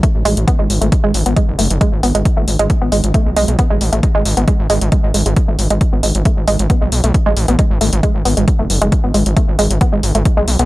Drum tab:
HH |x-oxx-oxx-oxx-ox|x-oxx-oxx-oxx-ox|x-oxx-oxx-oxx-ox|x-oxx-oxx-oxx-ox|
BD |o---o---o---o---|o---o---o---o---|o---o---o---o---|o---o---o---o---|

HH |x-oxx-oxx-oxx-ox|x-oxx-oxx-oxx-ox|
BD |o---o---o---o---|o---o---o---o---|